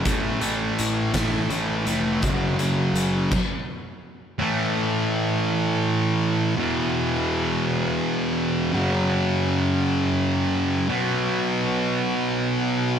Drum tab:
CC |------|---x--|------|------|
HH |xxxxxx|xxx---|------|------|
SD |---o--|------|------|------|
BD |o--o--|o--o--|------|------|

CC |------|------|
HH |------|------|
SD |------|------|
BD |------|------|